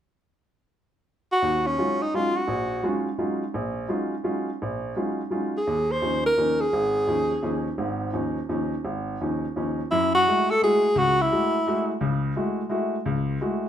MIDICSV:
0, 0, Header, 1, 3, 480
1, 0, Start_track
1, 0, Key_signature, -6, "minor"
1, 0, Tempo, 352941
1, 484, Time_signature, 3, 2, 24, 8
1, 13463, Key_signature, 3, "minor"
1, 18617, End_track
2, 0, Start_track
2, 0, Title_t, "Alto saxophone"
2, 0, Program_c, 0, 65
2, 1796, Note_on_c, 0, 66, 93
2, 2265, Note_on_c, 0, 61, 79
2, 2285, Note_off_c, 0, 66, 0
2, 2754, Note_on_c, 0, 63, 75
2, 2774, Note_off_c, 0, 61, 0
2, 2924, Note_on_c, 0, 65, 85
2, 2945, Note_off_c, 0, 63, 0
2, 3208, Note_on_c, 0, 66, 79
2, 3228, Note_off_c, 0, 65, 0
2, 4167, Note_off_c, 0, 66, 0
2, 7578, Note_on_c, 0, 68, 77
2, 8043, Note_on_c, 0, 72, 91
2, 8064, Note_off_c, 0, 68, 0
2, 8508, Note_off_c, 0, 72, 0
2, 8516, Note_on_c, 0, 70, 82
2, 8986, Note_on_c, 0, 68, 77
2, 9006, Note_off_c, 0, 70, 0
2, 10420, Note_off_c, 0, 68, 0
2, 13477, Note_on_c, 0, 64, 95
2, 13757, Note_off_c, 0, 64, 0
2, 13800, Note_on_c, 0, 66, 91
2, 14286, Note_on_c, 0, 69, 92
2, 14306, Note_off_c, 0, 66, 0
2, 14439, Note_off_c, 0, 69, 0
2, 14464, Note_on_c, 0, 68, 94
2, 14939, Note_on_c, 0, 66, 102
2, 14960, Note_off_c, 0, 68, 0
2, 15246, Note_on_c, 0, 64, 87
2, 15267, Note_off_c, 0, 66, 0
2, 16183, Note_off_c, 0, 64, 0
2, 18617, End_track
3, 0, Start_track
3, 0, Title_t, "Upright piano"
3, 0, Program_c, 1, 0
3, 1934, Note_on_c, 1, 39, 65
3, 1941, Note_on_c, 1, 51, 66
3, 2347, Note_off_c, 1, 39, 0
3, 2351, Note_off_c, 1, 51, 0
3, 2424, Note_on_c, 1, 56, 45
3, 2426, Note_on_c, 1, 54, 51
3, 2426, Note_on_c, 1, 63, 47
3, 2429, Note_on_c, 1, 61, 45
3, 2438, Note_on_c, 1, 65, 56
3, 2744, Note_off_c, 1, 56, 0
3, 2745, Note_off_c, 1, 54, 0
3, 2745, Note_off_c, 1, 63, 0
3, 2746, Note_off_c, 1, 61, 0
3, 2751, Note_off_c, 1, 65, 0
3, 2912, Note_on_c, 1, 54, 50
3, 2915, Note_on_c, 1, 56, 47
3, 2917, Note_on_c, 1, 61, 46
3, 2924, Note_on_c, 1, 63, 48
3, 2928, Note_on_c, 1, 65, 57
3, 3229, Note_off_c, 1, 54, 0
3, 3230, Note_off_c, 1, 56, 0
3, 3231, Note_off_c, 1, 61, 0
3, 3235, Note_off_c, 1, 63, 0
3, 3237, Note_off_c, 1, 65, 0
3, 3369, Note_on_c, 1, 34, 67
3, 3787, Note_off_c, 1, 34, 0
3, 3851, Note_on_c, 1, 54, 53
3, 3852, Note_on_c, 1, 56, 48
3, 3859, Note_on_c, 1, 61, 48
3, 3862, Note_on_c, 1, 63, 47
3, 3867, Note_on_c, 1, 65, 60
3, 4179, Note_off_c, 1, 54, 0
3, 4180, Note_off_c, 1, 56, 0
3, 4183, Note_off_c, 1, 61, 0
3, 4185, Note_off_c, 1, 63, 0
3, 4187, Note_off_c, 1, 65, 0
3, 4331, Note_on_c, 1, 54, 55
3, 4331, Note_on_c, 1, 56, 49
3, 4331, Note_on_c, 1, 63, 47
3, 4333, Note_on_c, 1, 61, 44
3, 4341, Note_on_c, 1, 65, 56
3, 4660, Note_off_c, 1, 54, 0
3, 4660, Note_off_c, 1, 56, 0
3, 4660, Note_off_c, 1, 63, 0
3, 4661, Note_off_c, 1, 61, 0
3, 4665, Note_off_c, 1, 65, 0
3, 4819, Note_on_c, 1, 34, 68
3, 5233, Note_off_c, 1, 34, 0
3, 5280, Note_on_c, 1, 56, 49
3, 5284, Note_on_c, 1, 54, 52
3, 5291, Note_on_c, 1, 61, 48
3, 5294, Note_on_c, 1, 63, 48
3, 5301, Note_on_c, 1, 65, 57
3, 5615, Note_off_c, 1, 56, 0
3, 5617, Note_off_c, 1, 54, 0
3, 5621, Note_off_c, 1, 61, 0
3, 5622, Note_off_c, 1, 63, 0
3, 5626, Note_off_c, 1, 65, 0
3, 5766, Note_on_c, 1, 56, 47
3, 5768, Note_on_c, 1, 61, 48
3, 5769, Note_on_c, 1, 54, 51
3, 5773, Note_on_c, 1, 63, 45
3, 5774, Note_on_c, 1, 65, 54
3, 6099, Note_off_c, 1, 56, 0
3, 6100, Note_off_c, 1, 54, 0
3, 6100, Note_off_c, 1, 61, 0
3, 6102, Note_off_c, 1, 63, 0
3, 6103, Note_off_c, 1, 65, 0
3, 6283, Note_on_c, 1, 34, 67
3, 6687, Note_off_c, 1, 34, 0
3, 6745, Note_on_c, 1, 61, 46
3, 6747, Note_on_c, 1, 56, 47
3, 6752, Note_on_c, 1, 54, 51
3, 6754, Note_on_c, 1, 63, 49
3, 6761, Note_on_c, 1, 65, 56
3, 7069, Note_off_c, 1, 61, 0
3, 7070, Note_off_c, 1, 56, 0
3, 7073, Note_off_c, 1, 54, 0
3, 7073, Note_off_c, 1, 63, 0
3, 7077, Note_off_c, 1, 65, 0
3, 7214, Note_on_c, 1, 54, 49
3, 7224, Note_on_c, 1, 61, 47
3, 7225, Note_on_c, 1, 56, 47
3, 7227, Note_on_c, 1, 63, 48
3, 7231, Note_on_c, 1, 65, 56
3, 7544, Note_off_c, 1, 54, 0
3, 7549, Note_off_c, 1, 56, 0
3, 7549, Note_off_c, 1, 61, 0
3, 7550, Note_off_c, 1, 63, 0
3, 7552, Note_off_c, 1, 65, 0
3, 7713, Note_on_c, 1, 39, 65
3, 8123, Note_off_c, 1, 39, 0
3, 8185, Note_on_c, 1, 39, 51
3, 8187, Note_on_c, 1, 53, 44
3, 8189, Note_on_c, 1, 63, 54
3, 8196, Note_on_c, 1, 61, 46
3, 8510, Note_off_c, 1, 39, 0
3, 8511, Note_off_c, 1, 53, 0
3, 8512, Note_off_c, 1, 63, 0
3, 8515, Note_off_c, 1, 61, 0
3, 8669, Note_on_c, 1, 39, 50
3, 8671, Note_on_c, 1, 53, 45
3, 8680, Note_on_c, 1, 63, 59
3, 8683, Note_on_c, 1, 61, 45
3, 8992, Note_off_c, 1, 39, 0
3, 8993, Note_off_c, 1, 53, 0
3, 8997, Note_off_c, 1, 63, 0
3, 8999, Note_off_c, 1, 61, 0
3, 9156, Note_on_c, 1, 32, 66
3, 9565, Note_off_c, 1, 32, 0
3, 9619, Note_on_c, 1, 39, 53
3, 9630, Note_on_c, 1, 53, 47
3, 9637, Note_on_c, 1, 61, 48
3, 9637, Note_on_c, 1, 63, 56
3, 9947, Note_off_c, 1, 39, 0
3, 9953, Note_off_c, 1, 53, 0
3, 9956, Note_off_c, 1, 61, 0
3, 9957, Note_off_c, 1, 63, 0
3, 10096, Note_on_c, 1, 39, 52
3, 10107, Note_on_c, 1, 53, 46
3, 10109, Note_on_c, 1, 61, 47
3, 10110, Note_on_c, 1, 63, 57
3, 10426, Note_off_c, 1, 39, 0
3, 10432, Note_off_c, 1, 53, 0
3, 10433, Note_off_c, 1, 61, 0
3, 10433, Note_off_c, 1, 63, 0
3, 10583, Note_on_c, 1, 32, 69
3, 10593, Note_on_c, 1, 44, 71
3, 10998, Note_off_c, 1, 32, 0
3, 11004, Note_off_c, 1, 44, 0
3, 11057, Note_on_c, 1, 61, 48
3, 11059, Note_on_c, 1, 39, 53
3, 11060, Note_on_c, 1, 53, 47
3, 11069, Note_on_c, 1, 63, 59
3, 11387, Note_off_c, 1, 61, 0
3, 11388, Note_off_c, 1, 39, 0
3, 11388, Note_off_c, 1, 53, 0
3, 11393, Note_off_c, 1, 63, 0
3, 11548, Note_on_c, 1, 39, 52
3, 11548, Note_on_c, 1, 53, 48
3, 11551, Note_on_c, 1, 63, 60
3, 11554, Note_on_c, 1, 61, 47
3, 11872, Note_off_c, 1, 39, 0
3, 11872, Note_off_c, 1, 53, 0
3, 11874, Note_off_c, 1, 63, 0
3, 11875, Note_off_c, 1, 61, 0
3, 12031, Note_on_c, 1, 32, 69
3, 12442, Note_off_c, 1, 32, 0
3, 12528, Note_on_c, 1, 39, 54
3, 12529, Note_on_c, 1, 61, 47
3, 12532, Note_on_c, 1, 53, 46
3, 12534, Note_on_c, 1, 63, 58
3, 12841, Note_off_c, 1, 39, 0
3, 12842, Note_off_c, 1, 61, 0
3, 12843, Note_off_c, 1, 53, 0
3, 12844, Note_off_c, 1, 63, 0
3, 13001, Note_on_c, 1, 39, 50
3, 13010, Note_on_c, 1, 53, 46
3, 13014, Note_on_c, 1, 61, 48
3, 13019, Note_on_c, 1, 63, 57
3, 13318, Note_off_c, 1, 39, 0
3, 13322, Note_off_c, 1, 53, 0
3, 13324, Note_off_c, 1, 61, 0
3, 13327, Note_off_c, 1, 63, 0
3, 13492, Note_on_c, 1, 42, 69
3, 13892, Note_off_c, 1, 42, 0
3, 13965, Note_on_c, 1, 56, 55
3, 13976, Note_on_c, 1, 57, 51
3, 13976, Note_on_c, 1, 64, 47
3, 13985, Note_on_c, 1, 66, 57
3, 14279, Note_off_c, 1, 56, 0
3, 14284, Note_off_c, 1, 57, 0
3, 14284, Note_off_c, 1, 64, 0
3, 14289, Note_off_c, 1, 66, 0
3, 14442, Note_on_c, 1, 56, 57
3, 14454, Note_on_c, 1, 57, 49
3, 14456, Note_on_c, 1, 64, 48
3, 14461, Note_on_c, 1, 66, 62
3, 14756, Note_off_c, 1, 56, 0
3, 14763, Note_off_c, 1, 57, 0
3, 14763, Note_off_c, 1, 64, 0
3, 14766, Note_off_c, 1, 66, 0
3, 14898, Note_on_c, 1, 37, 73
3, 15312, Note_off_c, 1, 37, 0
3, 15391, Note_on_c, 1, 56, 53
3, 15398, Note_on_c, 1, 57, 51
3, 15402, Note_on_c, 1, 66, 64
3, 15404, Note_on_c, 1, 64, 52
3, 15709, Note_off_c, 1, 56, 0
3, 15713, Note_off_c, 1, 57, 0
3, 15715, Note_off_c, 1, 66, 0
3, 15716, Note_off_c, 1, 64, 0
3, 15866, Note_on_c, 1, 56, 54
3, 15876, Note_on_c, 1, 57, 52
3, 15880, Note_on_c, 1, 64, 51
3, 15883, Note_on_c, 1, 66, 64
3, 16186, Note_off_c, 1, 56, 0
3, 16191, Note_off_c, 1, 57, 0
3, 16193, Note_off_c, 1, 64, 0
3, 16194, Note_off_c, 1, 66, 0
3, 16330, Note_on_c, 1, 37, 70
3, 16332, Note_on_c, 1, 49, 73
3, 16745, Note_off_c, 1, 37, 0
3, 16746, Note_off_c, 1, 49, 0
3, 16814, Note_on_c, 1, 64, 52
3, 16815, Note_on_c, 1, 56, 59
3, 16817, Note_on_c, 1, 57, 51
3, 16823, Note_on_c, 1, 66, 64
3, 17138, Note_off_c, 1, 56, 0
3, 17138, Note_off_c, 1, 64, 0
3, 17139, Note_off_c, 1, 57, 0
3, 17143, Note_off_c, 1, 66, 0
3, 17263, Note_on_c, 1, 56, 56
3, 17272, Note_on_c, 1, 57, 51
3, 17272, Note_on_c, 1, 64, 49
3, 17282, Note_on_c, 1, 66, 64
3, 17602, Note_off_c, 1, 56, 0
3, 17606, Note_off_c, 1, 57, 0
3, 17606, Note_off_c, 1, 64, 0
3, 17611, Note_off_c, 1, 66, 0
3, 17756, Note_on_c, 1, 37, 78
3, 18175, Note_off_c, 1, 37, 0
3, 18238, Note_on_c, 1, 56, 55
3, 18243, Note_on_c, 1, 64, 49
3, 18244, Note_on_c, 1, 57, 51
3, 18245, Note_on_c, 1, 66, 62
3, 18567, Note_off_c, 1, 56, 0
3, 18570, Note_off_c, 1, 57, 0
3, 18570, Note_off_c, 1, 64, 0
3, 18571, Note_off_c, 1, 66, 0
3, 18617, End_track
0, 0, End_of_file